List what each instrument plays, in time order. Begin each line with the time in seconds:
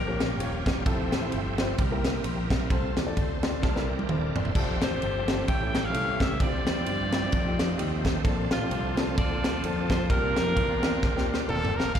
Already playing: fretless electric bass A#1, upright piano A#2, tonewheel organ F3 G3 A#3 G4 C#5, saxophone section D4 G4 A#4
0.07 upright piano A#3 C#4 F4 G4 A#4
0.20 snare, ride
0.40 fretless electric bass D#1, upright piano A#3 C#4 F4 G4 C#5, ride
0.66 fretless electric bass E1, kick, snare, ride
0.85 fretless electric bass F1, tonewheel organ F3 A3 C4 E4 G4, upright piano C4 E4 F4 G4 A4, kick, ride
1.12 fretless electric bass A1, snare, ride
1.22 upright piano C4 E4 F4 G4 C5
1.32 fretless electric bass G1, ride
1.58 upright piano C4 E4 F4 G4 C5, snare, ride
1.78 fretless electric bass C2, upright piano C3, tonewheel organ G3 A#3 C4 D4 A#4, kick, ride
1.84 tonewheel organ E4
1.92 upright piano A#3 C4 E4 G4 A#4
2.04 snare, ride
2.24 fretless electric bass A#1, upright piano C6, ride
2.50 fretless electric bass B1, upright piano E5, kick, snare, ride
2.70 fretless electric bass C2, upright piano C3 A3 C4 F4 A4 C5, tonewheel organ C4 F4 A4, kick, ride
2.97 fretless electric bass E2, tonewheel organ D5, snare, ride
3.06 upright piano A3 C4 F4 A4 D5
3.17 fretless electric bass D2, tonewheel organ A4 C5, kick, ride
3.43 upright piano A3 C4 F4 A4 D5 C6, tonewheel organ F4 A4, snare, ride
3.61 fretless electric bass C2, upright piano C3 A5, tonewheel organ E3 A#3 C4 D4 A4, kick, snare
3.75 upright piano C4 D4 E4 A4 A#4, snare
3.88 tonewheel organ G4 A#4, upright piano G5
3.99 high tom
4.08 fretless electric bass D#1, upright piano C4 D4 E4 A4 C5 E5, tonewheel organ A#4 D5, mid tom
4.35 fretless electric bass E1, tonewheel organ C5 E5, upright piano D5, floor tom
4.45 floor tom
4.55 fretless electric bass F1, tonewheel organ F3 A3 C4 D4 G4, upright piano C4 D4 F4 G4 A4, kick, crash
4.82 fretless electric bass A1, saxophone section G4 A4 C5, snare, ride
4.91 upright piano C4 D4 F4 G4 A4
5.01 fretless electric bass G1, ride
5.27 upright piano C4 D4 F4 G4 A4, snare, ride
5.47 fretless electric bass A1, upright piano A2, tonewheel organ E3 G3 A3 C#4 G4, saxophone section C#5 E5 G5, kick, ride
5.60 upright piano A3 C#4 E4 G4 A4
5.75 snare, ride
5.85 saxophone section C#5 F5
5.93 fretless electric bass C2, upright piano A3 C#4 E4 G4 A4, ride
6.20 fretless electric bass C#2, saxophone section E5, kick, snare, ride
6.39 fretless electric bass D2, upright piano D3 C4 D4 E4 F4 G4, tonewheel organ F3 C4 D4 G4 E5, saxophone section F4 G4 D5, kick, ride
6.67 fretless electric bass E2, snare, ride
6.76 upright piano C4 D4 E4 F4 G4
6.86 fretless electric bass G2, ride
7.12 upright piano C4 D4 E4 F4 G4, snare, ride
7.31 fretless electric bass F2, tonewheel organ F3 G3 C4 D#4 G4, kick, ride
7.36 tonewheel organ A3
7.46 upright piano A3 C4 D#4 F4 G4
7.59 snare, ride
7.78 fretless electric bass D#2, upright piano A3 C4 D#4 F4 G4, ride
8.05 kick, snare, ride
8.24 fretless electric bass A#1, upright piano A#2 A#3 C4 D4 F4 A4, tonewheel organ F3 C4 D4 A4, kick, ride
8.51 fretless electric bass A1, saxophone section A3 D4 F4, snare, ride
8.61 upright piano A#3 C4 D4 F4 G4
8.70 fretless electric bass C2, ride
8.97 upright piano A#3 C4 D4 F4 A4, snare, ride
9.17 fretless electric bass D2, saxophone section F4 A4 D5, kick, ride
9.31 upright piano A#3 C4 D4 F4 A4
9.44 snare, ride
9.63 fretless electric bass F2, upright piano A#3 C4 D4 F4 A4, ride
9.89 saxophone section C5, kick, snare, ride
10.10 fretless electric bass C2, upright piano C3 A#3 C4 D4 F4 G4, tonewheel organ A#3 C4 D4 F4 F#4, saxophone section D4 F4 A#4, kick, ride
10.17 tonewheel organ G4
10.37 fretless electric bass F2, snare, ride
10.47 upright piano A#3 C4 D4 F4 A4
10.56 fretless electric bass E2, kick, ride
10.83 upright piano A#3 C4 D4 F4 G4, snare, ride
11.02 fretless electric bass D2, kick, snare
11.15 upright piano A#3 C4 D4 F4 G4, snare
11.34 snare
11.48 fretless electric bass D#1, upright piano A#3 C4 D4 F4 A#4, trumpet A4, mid tom
11.65 floor tom
11.75 fretless electric bass E1, trumpet A#4
11.80 snare
11.95 fretless electric bass F1, upright piano A3 C4 F4 A4, trumpet F5, kick, crash